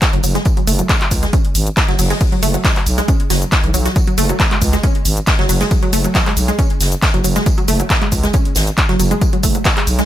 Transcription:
0.02 kick, snare, clap, closed hi-hat, tambourine, shaker
0.13 fm bass F#1, synth arpeggio sound F#3, closed hi-hat
0.23 fm bass F#1, synth arpeggio sound F#3, open hi-hat, tambourine, shaker
0.35 synth arpeggio sound G#3, snare, closed hi-hat, shaker
0.45 kick, closed hi-hat, tambourine, shaker
0.57 synth arpeggio sound F#3, closed hi-hat
0.67 fm bass F#1, synth arpeggio sound A3, open hi-hat, tambourine, shaker
0.79 synth arpeggio sound F#3, closed hi-hat, shaker
0.89 kick, snare, clap, closed hi-hat, tambourine, shaker
1.01 clap, closed hi-hat
1.11 fm bass C#2, kick, open hi-hat, tambourine, shaker
1.23 synth arpeggio sound G#3, snare, closed hi-hat, shaker
1.33 synth arpeggio sound C#4, kick, closed hi-hat, tambourine, shaker
1.45 closed hi-hat
1.55 fm bass G#1, open hi-hat, tambourine, shaker
1.67 closed hi-hat, shaker
1.77 kick, snare, clap, closed hi-hat, tambourine, shaker
1.88 fm bass F#1, synth arpeggio sound F#3, snare, closed hi-hat
1.99 fm bass F#1, synth arpeggio sound F#3, open hi-hat, shaker
2.10 synth arpeggio sound G#3, snare, closed hi-hat, shaker
2.20 kick, closed hi-hat, tambourine, shaker
2.32 synth arpeggio sound F#3, closed hi-hat
2.42 fm bass F#1, synth arpeggio sound A3, open hi-hat, tambourine, shaker
2.54 synth arpeggio sound F#3, closed hi-hat, shaker
2.65 kick, snare, clap, closed hi-hat, tambourine, shaker
2.76 clap, closed hi-hat
2.86 fm bass B1, open hi-hat, tambourine, shaker
2.98 synth arpeggio sound G#3, snare, closed hi-hat, shaker
3.08 synth arpeggio sound C#4, kick, closed hi-hat, tambourine, shaker
3.20 closed hi-hat
3.30 fm bass F#1, synth arpeggio sound F#3, snare, open hi-hat, tambourine, shaker
3.42 closed hi-hat, shaker
3.52 kick, snare, clap, closed hi-hat, tambourine, shaker
3.64 fm bass B1, synth arpeggio sound E3, closed hi-hat
3.74 fm bass B1, synth arpeggio sound F#3, open hi-hat, tambourine, shaker
3.85 synth arpeggio sound F#4, snare, closed hi-hat, shaker
3.96 kick, closed hi-hat, tambourine, shaker
4.07 synth arpeggio sound F#3, closed hi-hat
4.18 fm bass F#1, synth arpeggio sound A3, open hi-hat, tambourine, shaker
4.29 synth arpeggio sound F#3, closed hi-hat, shaker
4.40 kick, snare, clap, closed hi-hat, tambourine, shaker
4.51 synth arpeggio sound G#3, clap, closed hi-hat
4.62 fm bass C#2, kick, open hi-hat, tambourine, shaker
4.73 synth arpeggio sound G#3, snare, closed hi-hat, shaker
4.83 synth arpeggio sound C#4, kick, closed hi-hat, tambourine, shaker
4.95 closed hi-hat
5.05 fm bass G#1, open hi-hat, tambourine, shaker
5.17 closed hi-hat, shaker
5.27 kick, snare, clap, closed hi-hat, tambourine, shaker
5.39 fm bass F#1, synth arpeggio sound F#3, snare, closed hi-hat
5.49 fm bass F#1, synth arpeggio sound F#3, open hi-hat, shaker
5.60 synth arpeggio sound G#3, snare, closed hi-hat, shaker
5.71 kick, closed hi-hat, tambourine, shaker
5.83 synth arpeggio sound F#3, closed hi-hat
5.93 fm bass F#1, synth arpeggio sound A3, open hi-hat, tambourine, shaker
6.04 synth arpeggio sound F#3, closed hi-hat, shaker
6.14 kick, snare, clap, closed hi-hat, tambourine, shaker
6.26 synth arpeggio sound G#3, clap, closed hi-hat
6.37 fm bass B1, open hi-hat, tambourine, shaker
6.48 synth arpeggio sound G#3, snare, closed hi-hat, shaker
6.59 synth arpeggio sound C#4, kick, closed hi-hat, tambourine, shaker
6.70 closed hi-hat
6.80 fm bass F#1, snare, open hi-hat, tambourine, shaker
6.92 closed hi-hat, shaker
7.02 kick, snare, clap, closed hi-hat, tambourine, shaker
7.13 fm bass F#1, synth arpeggio sound F#3, closed hi-hat
7.24 fm bass F#1, synth arpeggio sound F#3, open hi-hat, tambourine, shaker
7.36 synth arpeggio sound G#3, snare, closed hi-hat, shaker
7.46 kick, closed hi-hat, tambourine, shaker
7.58 synth arpeggio sound F#3, closed hi-hat
7.68 fm bass F#1, synth arpeggio sound A3, open hi-hat, tambourine, shaker
7.80 synth arpeggio sound F#3, closed hi-hat, shaker
7.90 kick, snare, clap, closed hi-hat, tambourine, shaker
8.02 synth arpeggio sound G#3, clap, closed hi-hat
8.12 fm bass C#2, kick, open hi-hat, tambourine, shaker
8.23 synth arpeggio sound G#3, snare, closed hi-hat, shaker
8.33 synth arpeggio sound C#4, kick, closed hi-hat, tambourine, shaker
8.45 closed hi-hat
8.55 fm bass G#1, snare, open hi-hat, tambourine, shaker
8.67 closed hi-hat, shaker
8.78 kick, clap, closed hi-hat, tambourine, shaker
8.89 fm bass F#1, synth arpeggio sound F#3, snare, closed hi-hat
9.00 fm bass F#1, synth arpeggio sound F#3, open hi-hat, tambourine, shaker
9.11 synth arpeggio sound G#3, closed hi-hat, shaker
9.21 kick, closed hi-hat, tambourine, shaker
9.33 synth arpeggio sound F#3, closed hi-hat
9.43 fm bass F#1, synth arpeggio sound A3, kick, open hi-hat, tambourine, shaker
9.55 synth arpeggio sound F#3, closed hi-hat, shaker
9.64 kick, snare, clap, closed hi-hat, tambourine, shaker
9.76 synth arpeggio sound G#3, clap, closed hi-hat
9.87 fm bass B1, open hi-hat, tambourine, shaker
9.98 synth arpeggio sound G#3, snare, closed hi-hat, shaker

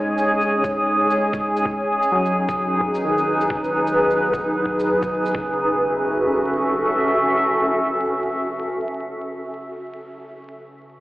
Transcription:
Already playing: synth keys G#3, ambient pad C#4 G#4 C#5 G#5
0.18 shaker
0.41 shaker
0.64 kick, shaker
1.11 shaker
1.33 kick, shaker
1.57 shaker
1.66 ambient pad D#4, kick
2.03 shaker
2.12 synth keys F#3
2.26 ambient pad B4, shaker
2.49 kick, shaker
2.81 kick
2.95 shaker
3.04 synth keys D#3
3.18 shaker
3.41 shaker
3.50 kick
3.64 shaker
3.87 shaker
4.10 shaker
4.33 kick, shaker
4.66 kick
4.80 shaker
5.03 kick, shaker
5.26 shaker
5.35 synth keys C#3, ambient pad C#4, kick
5.44 ambient pad F#4
5.51 ambient pad A4
5.56 ambient pad E5

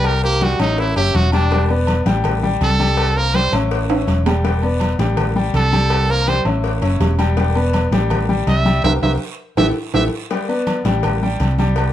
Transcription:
Already playing: fingered electric bass C2, grand piano G3 G4 G5
0.04 trumpet A#4, cowbell, high conga, low agogo, long guiro
0.23 grand piano A#3 A#4 C5, trumpet G4, high conga
0.41 grand piano G3 G4 G5, trumpet F#4, cowbell, high conga, low agogo, short guiro
0.59 fingered electric bass A1, grand piano C#4 C#5 E5, trumpet D#4, cowbell, high conga, low agogo, short guiro
0.78 trumpet E4, cowbell, long guiro
0.96 fingered electric bass F#1, grand piano C#4 C#5 E5, trumpet G4, cowbell, high conga, low agogo
1.14 fingered electric bass E1, trumpet F#4, cowbell, high conga, low agogo, short guiro
1.32 grand piano G3 G4 G5, trumpet D4, cowbell, high conga, low agogo, short guiro
1.50 grand piano G3 G4 G5, cowbell, high conga, low agogo, long guiro
1.69 grand piano B3 B4 D5, high conga, low agogo
1.87 cowbell, high conga, low agogo, short guiro
2.06 fingered electric bass A1, grand piano G3 G4 G5, cowbell, high conga, short guiro
2.24 cowbell, high conga, low conga, low agogo, long guiro
2.43 grand piano G3 G4 G5, high conga, low conga
2.61 fingered electric bass C2, trumpet A4, cowbell, high conga, low agogo, short guiro
2.79 grand piano G3 G4 G5, high conga, low agogo, short guiro
2.97 cowbell, high conga, low agogo, long guiro
3.16 grand piano A#3 A#4 C5, trumpet A#4, high conga
3.34 grand piano G3 G4 G5, trumpet C5, cowbell, high conga, low agogo, short guiro
3.52 fingered electric bass A1, grand piano C#4 C#5 E5, cowbell, high conga, low agogo, short guiro
3.71 cowbell, high conga, long guiro
3.89 grand piano C#4 C#5 E5, cowbell, high conga, high timbale, low agogo
4.07 fingered electric bass E1, cowbell, high conga, low agogo, short guiro
4.26 grand piano G3 G4 G5, cowbell, high conga, low timbale, low agogo, short guiro
4.44 grand piano G3 G4 G5, cowbell, high conga, low agogo, long guiro
4.62 grand piano B3 B4 D5, high conga, low agogo
4.80 cowbell, high conga, low agogo, short guiro
4.99 fingered electric bass A1, grand piano G3 G4 G5, cowbell, high conga, short guiro
5.17 cowbell, high conga, low conga, low agogo, long guiro
5.36 grand piano G3 G4 G5
5.53 fingered electric bass C2, trumpet A4, cowbell, high conga, low agogo, short guiro
5.72 grand piano G3 G4 G5, high conga, low agogo, short guiro
5.90 cowbell, low agogo, long guiro
6.09 grand piano A#3 A#4 C5, trumpet A#4, high conga
6.27 grand piano G3 G4 G5, trumpet C5, cowbell, high conga, low agogo, short guiro
6.45 fingered electric bass A1, grand piano C#4 C#5 E5, cowbell, high conga, low agogo, short guiro
6.64 cowbell, high conga, long guiro
6.82 fingered electric bass F#1, grand piano C#4 C#5 E5, cowbell, high conga, low agogo
7.00 fingered electric bass E1, cowbell, high conga, low timbale, low agogo, short guiro
7.19 grand piano G3 G4 G5, cowbell, high conga, low agogo, short guiro
7.37 grand piano G3 G4 G5, cowbell, low agogo, long guiro
7.55 grand piano B3 B4 D5, high conga, low agogo
7.73 cowbell, high conga, low agogo, short guiro
7.91 fingered electric bass A1, grand piano G3 G4 G5, cowbell, high conga, short guiro
8.10 cowbell, high conga, low conga, low agogo, long guiro
8.29 grand piano G3 G4 G5, high conga, low conga
8.47 fingered electric bass C2, trumpet E5, cowbell, high conga, low agogo, short guiro
8.66 grand piano G3 G4 G5, high conga, low agogo, short guiro
8.84 fingered electric bass C2, grand piano G4 A#4 C5, trumpet E5, cowbell, high conga, high timbale, long guiro
9.02 fingered electric bass C2, grand piano G4 A#4 C5, trumpet E5, cowbell, high conga, high timbale, long guiro
9.57 fingered electric bass A1, grand piano E4 G4 A4, trumpet E5, cowbell, high conga, high timbale, long guiro
9.93 fingered electric bass A1, grand piano E4 G4 A4, trumpet E5, cowbell, high conga, high timbale, long guiro
10.30 grand piano G3 G4 G5, cowbell, high conga, low agogo, long guiro
10.49 grand piano B3 B4 D5, high conga, low agogo
10.67 cowbell, high conga, low agogo, short guiro
10.85 fingered electric bass A1, grand piano G3 G4 G5, cowbell, high conga, short guiro
11.03 cowbell, high conga, low conga, low agogo, long guiro
11.22 grand piano G3 G4 G5, high conga
11.40 fingered electric bass C2, cowbell, high conga, low agogo, short guiro
11.58 grand piano G3 G4 G5, high conga, low agogo, short guiro
11.76 cowbell, low agogo, long guiro

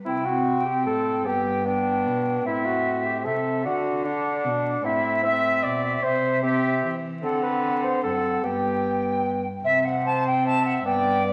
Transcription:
0.06 cello C3, bassoon C4, cornet E4, recorder G5
0.25 cornet F#4
0.65 cornet G4
0.85 cello A2, cornet A4
1.25 cello G2, bassoon B3, cornet G4, recorder G5
1.65 bassoon B3, cornet D4, recorder G5
2.06 cello B2
2.45 cello A2, bassoon C4, cornet E4, recorder E5
2.66 cornet F#4
3.05 cornet G4
3.25 cello C3, bassoon C4, cornet A4, recorder E5
3.64 cello D3, bassoon D4, cornet F#4, recorder F#5
4.04 bassoon D4, cornet D4, recorder F#5
4.45 cello B2
4.84 cello A2, bassoon C4, cornet E4, recorder E5
5.23 bassoon C4, cornet E5, recorder E5
5.63 cello B2, cornet D5
6.03 cello C3, bassoon C4, cornet C5, recorder E5
6.43 bassoon C4, cornet G4, recorder E5
6.83 cello E3
7.22 cello D3, bassoon C4, cornet A4, recorder F#5
7.43 cornet B4
7.83 cornet C5
8.03 cello F#2, bassoon C4, cornet A4, recorder F#5
8.43 cello G2, bassoon B3, cornet G4, recorder G5
9.64 cello C3, bassoon C4, recorder E5
9.84 recorder F#5
10.05 cornet C5, recorder A5
10.26 recorder G5
10.45 cornet E5, recorder A5
10.65 recorder F#5
10.84 cello G2, bassoon B3, cornet D5, recorder G5
11.24 bassoon B3, recorder D5

